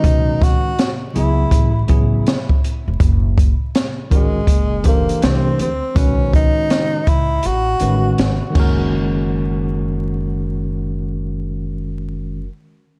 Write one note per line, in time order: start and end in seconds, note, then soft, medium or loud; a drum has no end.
0.00 0.72 D#3 medium
0.00 0.72 G#3 medium
0.00 0.72 C#4 medium
0.00 0.45 D#4 loud
0.00 0.72 F#4 medium
0.00 0.73 B4 medium
0.00 kick loud
0.04 0.54 B1 loud
0.04 closed hi-hat medium
0.42 0.92 F#4 loud
0.42 kick loud
0.42 snare soft
0.42 closed hi-hat medium
0.79 snare loud
0.79 closed hi-hat medium
1.14 1.46 C#2 medium
1.14 1.70 C#3 medium
1.14 1.70 F#3 medium
1.14 1.71 B3 medium
1.14 1.71 E4 medium
1.14 1.86 E4 medium
1.14 1.71 G#4 medium
1.14 closed hi-hat medium
1.51 1.82 A1 loud
1.51 kick medium
1.51 closed hi-hat medium
1.87 2.20 A1 medium
1.87 2.34 C#3 medium
1.87 2.35 F#3 medium
1.87 2.35 B3 medium
1.87 2.35 E4 medium
1.87 2.36 G#4 medium
1.87 kick medium
1.87 closed hi-hat medium
2.27 snare loud
2.27 closed hi-hat medium
2.49 kick medium
2.64 closed hi-hat medium
2.88 2.98 E1 medium
3.00 3.50 F#1 loud
3.00 kick loud
3.00 closed hi-hat medium
3.38 kick loud
3.38 closed hi-hat medium
3.75 snare loud
3.75 closed hi-hat medium
4.10 4.42 G#1 medium
4.10 4.40 D#3 medium
4.10 4.40 G#3 medium
4.10 4.83 G#3 medium
4.10 4.40 C#4 medium
4.10 4.41 F#4 medium
4.10 4.41 A#4 medium
4.10 kick medium
4.10 closed hi-hat medium
4.47 5.09 F#1 medium
4.47 kick medium
4.47 closed hi-hat medium
4.84 5.20 E3 medium
4.84 5.26 A#3 medium
4.84 5.21 D4 medium
4.84 5.22 G4 medium
4.84 5.31 A4 medium
4.84 5.22 C5 medium
4.84 kick medium
4.84 closed hi-hat medium
5.09 closed hi-hat soft
5.21 5.53 C2 medium
5.21 5.68 E3 medium
5.21 5.68 A3 medium
5.21 5.60 C4 medium
5.21 5.69 D4 medium
5.21 5.69 G4 medium
5.21 5.69 C5 medium
5.21 snare loud
5.21 closed hi-hat medium
5.59 5.79 D2 loud
5.59 5.99 C4 medium
5.59 closed hi-hat medium
5.95 6.46 B1 loud
5.95 7.01 D#3 medium
5.95 7.02 G#3 medium
5.95 7.02 C#4 medium
5.95 6.34 C#4 loud
5.95 7.02 F#4 medium
5.95 7.02 B4 medium
5.95 kick loud
5.95 closed hi-hat medium
6.33 7.10 D#4 loud
6.33 kick medium
6.33 closed hi-hat medium
6.70 snare loud
6.70 closed hi-hat medium
7.07 7.38 C#2 medium
7.07 7.48 E4 medium
7.07 kick medium
7.07 closed hi-hat medium
7.43 7.76 A1 medium
7.43 8.19 F#4 loud
7.43 closed hi-hat medium
7.80 8.12 A1 medium
7.80 8.37 D#3 medium
7.80 8.37 G#3 medium
7.80 8.37 C#4 medium
7.80 8.37 F#4 medium
7.80 8.38 B4 medium
7.80 closed hi-hat medium
8.18 8.38 G#1 medium
8.18 snare loud
8.18 closed hi-hat medium
8.50 12.40 D#3 medium
8.50 12.42 G#3 medium
8.55 12.45 F#1 loud
8.55 12.44 C#4 medium
8.55 12.47 F#4 medium
8.55 kick loud
8.55 crash medium
8.60 12.49 A#4 loud